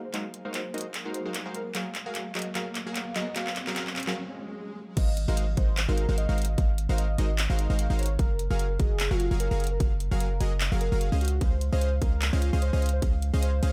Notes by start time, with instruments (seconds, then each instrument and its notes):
Already playing: ambient pad F#3 A#3 G#4 C5 F5, riser
0.05 soft synth lead C5
0.14 supersaw synth G#3 D#4 F#4 A#4 C5 F5, clap, closed hi-hat
0.34 closed hi-hat
0.45 supersaw synth G#3 D#4 F#4 A#4 C5 F5
0.54 soft synth lead C5, clap, closed hi-hat
0.74 supersaw synth G#3 D#4 F#4 A#4 C5 D#5, closed hi-hat
0.78 closed hi-hat
0.81 closed hi-hat
0.94 clap, closed hi-hat
1.05 supersaw synth G#3 D#4 F#4 A#4 C5 F5
1.14 soft synth lead C5, closed hi-hat
1.26 supersaw synth G#3 D#4 F#4 A#4 C5 F5
1.34 clap, closed hi-hat
1.46 supersaw synth G#3 D#4 F#4 A#4 C5 F5
1.55 soft synth lead A#4, closed hi-hat
1.75 supersaw synth F#3 F#4 G#4 A#4 F5, soft synth lead F5, clap, closed hi-hat
1.95 clap, closed hi-hat
2.06 supersaw synth F#3 F#4 G#4 A#4 F5, soft synth lead F5
2.15 clap, closed hi-hat
2.35 supersaw synth F#3 F#4 G#4 A#4 D#5, soft synth lead D#5, clap, closed hi-hat
2.39 closed hi-hat
2.42 closed hi-hat
2.55 supersaw synth F#3 F#4 G#4 A#4 F5, soft synth lead F5, clap, closed hi-hat
2.75 clap, closed hi-hat
2.87 supersaw synth F#3 F#4 G#4 A#4 F5, soft synth lead F5
2.96 clap, closed hi-hat
3.16 supersaw synth F#3 F#4 G#4 A#4 D#5, soft synth lead D#5, clap, closed hi-hat
3.36 supersaw synth F#3 F#4 G#4 A#4 F5, soft synth lead F5, clap, closed hi-hat
3.47 clap
3.56 clap, closed hi-hat
3.67 supersaw synth F#3 F#4 G#4 A#4 F5, soft synth lead F5, clap
3.76 supersaw synth F#3 F#4 G#4 A#4 F5, soft synth lead F5, clap, closed hi-hat
3.87 clap
3.96 clap, closed hi-hat
4.00 closed hi-hat
4.03 closed hi-hat
4.07 supersaw synth F#3 F#4 G#4 A#4 F5, soft synth lead F5, clap
4.16 swell
4.97 808-style bass G#1, supersaw synth G#3 D#4 F#4 A#4 C5 F5, soft synth lead D#5, digital synth lead F5, kick, closed hi-hat, crash
5.17 closed hi-hat
5.28 808-style bass G#1, supersaw synth G#3 D#4 F#4 A#4 C5 F5, soft synth lead D#5, digital synth lead F5
5.37 closed hi-hat
5.57 808-style bass G#1, supersaw synth G#3 D#4 F#4 A#4 C5 D#5, soft synth lead C5, digital synth lead D#5, kick, closed hi-hat
5.77 clap, closed hi-hat
5.89 808-style bass G#1, supersaw synth G#3 D#4 F#4 A#4 C5 F5, soft synth lead A#4, digital synth lead F5
5.98 closed hi-hat
6.09 808-style bass G#1, supersaw synth G#3 D#4 F#4 A#4 C5 F5, digital synth lead F5
6.18 soft synth lead D#5, closed hi-hat
6.29 808-style bass G#1, supersaw synth G#3 D#4 F#4 A#4 C5 F5, digital synth lead F5
6.38 closed hi-hat
6.42 closed hi-hat
6.45 closed hi-hat
6.49 soft synth lead D#5
6.58 808-style bass G#1, supersaw synth G#3 D#4 F#4 A#4 C5 F5, digital synth lead F5, kick, closed hi-hat
6.78 closed hi-hat
6.89 808-style bass G#1, supersaw synth G#3 D#4 F#4 A#4 C5 F5, digital synth lead F5
6.98 soft synth lead D#5, closed hi-hat
7.18 808-style bass G#1, supersaw synth G#3 D#4 F#4 A#4 C5 D#5, digital synth lead D#5, closed hi-hat
7.39 clap, closed hi-hat
7.50 808-style bass G#1, supersaw synth G#3 D#4 F#4 A#4 C5 F5, digital synth lead F5
7.59 soft synth lead D#5, closed hi-hat
7.70 808-style bass G#1, supersaw synth G#3 D#4 F#4 A#4 C5 F5, digital synth lead F5
7.79 closed hi-hat
7.90 808-style bass G#1, supersaw synth G#3 D#4 F#4 A#4 C5 F5, digital synth lead F5
7.99 soft synth lead C#5, closed hi-hat
8.03 closed hi-hat
8.06 closed hi-hat
8.19 808-style bass F#1, supersaw synth F#3 F#4 G#4 A#4 F5, soft synth lead A#4, digital synth lead F5, kick, closed hi-hat
8.39 closed hi-hat
8.50 808-style bass F#1, supersaw synth F#3 F#4 G#4 A#4 F5, soft synth lead A#4, digital synth lead F5
8.59 closed hi-hat
8.80 808-style bass F#1, supersaw synth F#3 F#4 G#4 A#4 D#5, soft synth lead G#4, digital synth lead D#5, kick, closed hi-hat
9.00 clap, closed hi-hat
9.11 808-style bass F#1, supersaw synth F#3 F#4 G#4 A#4 F5, soft synth lead F4, digital synth lead F5
9.20 closed hi-hat
9.31 808-style bass F#1, supersaw synth F#3 F#4 G#4 A#4 F5, digital synth lead F5
9.40 soft synth lead A#4, closed hi-hat
9.51 808-style bass F#1, supersaw synth F#3 F#4 G#4 A#4 F5, digital synth lead F5
9.60 closed hi-hat
9.64 closed hi-hat
9.67 closed hi-hat
9.71 soft synth lead A#4
9.80 808-style bass F#1, supersaw synth F#3 F#4 G#4 A#4 F5, digital synth lead F5, kick, closed hi-hat
10.00 closed hi-hat
10.11 808-style bass F#1, supersaw synth F#3 F#4 G#4 A#4 F5, digital synth lead F5
10.20 soft synth lead A#4, closed hi-hat
10.40 808-style bass F#1, supersaw synth F#3 F#4 G#4 A#4 D#5, digital synth lead D#5, closed hi-hat
10.61 clap, closed hi-hat
10.72 808-style bass F#1, supersaw synth F#3 F#4 G#4 A#4 F5, digital synth lead F5
10.81 soft synth lead A#4, closed hi-hat
10.92 808-style bass F#1, supersaw synth F#3 F#4 G#4 A#4 F5, digital synth lead F5
11.01 closed hi-hat
11.12 808-style bass C#2, supersaw synth C#4 G#4 C5 D#5 F5, digital synth lead F5
11.21 soft synth lead F#4, closed hi-hat
11.25 closed hi-hat
11.28 closed hi-hat
11.41 808-style bass C#2, supersaw synth C#4 G#4 C5 D#5 F5, soft synth lead C5, digital synth lead F5, kick, closed hi-hat, ride
11.61 closed hi-hat
11.73 808-style bass C#2, supersaw synth C#4 G#4 C5 D#5 F5, soft synth lead C5, digital synth lead F5
11.81 closed hi-hat
12.02 808-style bass C#2, supersaw synth C#4 G#4 C5 D#5 F5, soft synth lead A#4, digital synth lead F5, kick, closed hi-hat
12.22 clap, closed hi-hat
12.33 808-style bass C#2, supersaw synth C#4 G#4 C5 D#5 F5, soft synth lead F4, digital synth lead F5
12.42 closed hi-hat
12.53 808-style bass C#2, supersaw synth C#4 G#4 C5 D#5 F5, digital synth lead F5
12.62 soft synth lead C5, closed hi-hat
12.73 808-style bass C#2, supersaw synth C#4 G#4 C5 D#5 F5, digital synth lead F5
12.82 closed hi-hat
12.86 closed hi-hat
12.89 closed hi-hat
12.93 soft synth lead C5
13.02 808-style bass C#2, supersaw synth C#4 G#4 C5 D#5 F5, digital synth lead F5, kick, closed hi-hat, ride
13.22 closed hi-hat
13.34 808-style bass C#2, supersaw synth C#4 G#4 C5 D#5 F5, digital synth lead F5
13.42 soft synth lead C5, closed hi-hat
13.63 808-style bass C#2, supersaw synth C#4 G#4 C5 D#5 F5, digital synth lead F5, closed hi-hat